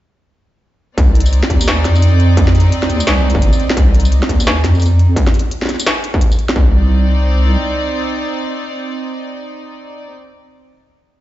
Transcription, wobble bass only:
0, 0, Header, 1, 2, 480
1, 0, Start_track
1, 0, Key_signature, -3, "minor"
1, 0, Tempo, 348837
1, 1347, Time_signature, 4, 2, 24, 8
1, 15422, End_track
2, 0, Start_track
2, 0, Title_t, "Wobble bass"
2, 0, Program_c, 0, 39
2, 1343, Note_on_c, 0, 36, 104
2, 1950, Note_off_c, 0, 36, 0
2, 2062, Note_on_c, 0, 39, 88
2, 2546, Note_on_c, 0, 41, 92
2, 2566, Note_off_c, 0, 39, 0
2, 3734, Note_off_c, 0, 41, 0
2, 3988, Note_on_c, 0, 39, 89
2, 4228, Note_on_c, 0, 36, 85
2, 4249, Note_off_c, 0, 39, 0
2, 4593, Note_off_c, 0, 36, 0
2, 4609, Note_on_c, 0, 31, 99
2, 4827, Note_off_c, 0, 31, 0
2, 5185, Note_on_c, 0, 36, 102
2, 5791, Note_off_c, 0, 36, 0
2, 5906, Note_on_c, 0, 39, 86
2, 6388, Note_on_c, 0, 41, 94
2, 6409, Note_off_c, 0, 39, 0
2, 7095, Note_off_c, 0, 41, 0
2, 9025, Note_on_c, 0, 36, 101
2, 10411, Note_off_c, 0, 36, 0
2, 15422, End_track
0, 0, End_of_file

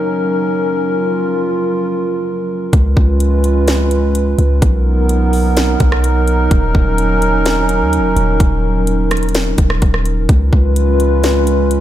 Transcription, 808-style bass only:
0, 0, Header, 1, 2, 480
1, 0, Start_track
1, 0, Key_signature, -6, "minor"
1, 0, Tempo, 472441
1, 855, Time_signature, 4, 2, 24, 8
1, 11992, End_track
2, 0, Start_track
2, 0, Title_t, "808-style bass"
2, 0, Program_c, 0, 38
2, 2775, Note_on_c, 0, 37, 111
2, 3005, Note_off_c, 0, 37, 0
2, 3015, Note_on_c, 0, 37, 101
2, 4414, Note_off_c, 0, 37, 0
2, 4456, Note_on_c, 0, 37, 104
2, 4686, Note_off_c, 0, 37, 0
2, 4695, Note_on_c, 0, 35, 110
2, 5854, Note_off_c, 0, 35, 0
2, 5896, Note_on_c, 0, 35, 103
2, 6587, Note_off_c, 0, 35, 0
2, 6615, Note_on_c, 0, 27, 108
2, 6846, Note_off_c, 0, 27, 0
2, 6855, Note_on_c, 0, 27, 106
2, 7935, Note_on_c, 0, 39, 101
2, 7951, Note_off_c, 0, 27, 0
2, 8115, Note_on_c, 0, 27, 98
2, 8131, Note_off_c, 0, 39, 0
2, 8286, Note_off_c, 0, 27, 0
2, 8295, Note_on_c, 0, 27, 105
2, 8526, Note_off_c, 0, 27, 0
2, 8535, Note_on_c, 0, 27, 115
2, 9694, Note_off_c, 0, 27, 0
2, 9735, Note_on_c, 0, 27, 104
2, 9966, Note_off_c, 0, 27, 0
2, 9978, Note_on_c, 0, 27, 106
2, 10438, Note_off_c, 0, 27, 0
2, 10455, Note_on_c, 0, 37, 112
2, 10685, Note_off_c, 0, 37, 0
2, 10695, Note_on_c, 0, 37, 102
2, 11992, Note_off_c, 0, 37, 0
2, 11992, End_track
0, 0, End_of_file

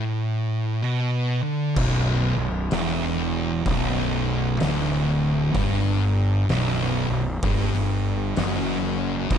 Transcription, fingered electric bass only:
0, 0, Header, 1, 2, 480
1, 0, Start_track
1, 0, Key_signature, 2, "minor"
1, 0, Tempo, 944882
1, 894, Time_signature, 4, 2, 24, 8
1, 4766, End_track
2, 0, Start_track
2, 0, Title_t, "Fingered electric bass"
2, 0, Program_c, 0, 33
2, 898, Note_on_c, 0, 23, 98
2, 1181, Note_off_c, 0, 23, 0
2, 1202, Note_on_c, 0, 23, 81
2, 1364, Note_off_c, 0, 23, 0
2, 1382, Note_on_c, 0, 28, 92
2, 1838, Note_off_c, 0, 28, 0
2, 1861, Note_on_c, 0, 23, 103
2, 2317, Note_off_c, 0, 23, 0
2, 2339, Note_on_c, 0, 26, 102
2, 2796, Note_off_c, 0, 26, 0
2, 2818, Note_on_c, 0, 31, 104
2, 3275, Note_off_c, 0, 31, 0
2, 3296, Note_on_c, 0, 23, 84
2, 3578, Note_off_c, 0, 23, 0
2, 3603, Note_on_c, 0, 23, 83
2, 3763, Note_off_c, 0, 23, 0
2, 3774, Note_on_c, 0, 31, 103
2, 4232, Note_off_c, 0, 31, 0
2, 4256, Note_on_c, 0, 30, 104
2, 4712, Note_off_c, 0, 30, 0
2, 4726, Note_on_c, 0, 23, 96
2, 4766, Note_off_c, 0, 23, 0
2, 4766, End_track
0, 0, End_of_file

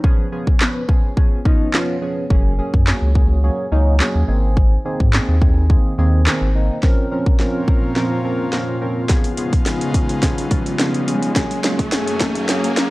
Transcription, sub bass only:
0, 0, Header, 1, 2, 480
1, 0, Start_track
1, 0, Key_signature, -5, "minor"
1, 0, Tempo, 566038
1, 33, Time_signature, 4, 2, 24, 8
1, 10940, End_track
2, 0, Start_track
2, 0, Title_t, "Sub bass"
2, 0, Program_c, 0, 38
2, 1954, Note_on_c, 0, 30, 107
2, 2207, Note_off_c, 0, 30, 0
2, 2321, Note_on_c, 0, 42, 96
2, 2486, Note_off_c, 0, 42, 0
2, 2560, Note_on_c, 0, 37, 96
2, 2969, Note_off_c, 0, 37, 0
2, 3155, Note_on_c, 0, 37, 88
2, 3408, Note_off_c, 0, 37, 0
2, 3521, Note_on_c, 0, 39, 87
2, 3599, Note_off_c, 0, 39, 0
2, 3633, Note_on_c, 0, 32, 97
2, 4052, Note_off_c, 0, 32, 0
2, 4242, Note_on_c, 0, 44, 99
2, 4407, Note_off_c, 0, 44, 0
2, 4482, Note_on_c, 0, 39, 95
2, 4890, Note_off_c, 0, 39, 0
2, 5074, Note_on_c, 0, 39, 93
2, 5327, Note_off_c, 0, 39, 0
2, 5440, Note_on_c, 0, 32, 85
2, 5684, Note_off_c, 0, 32, 0
2, 10940, End_track
0, 0, End_of_file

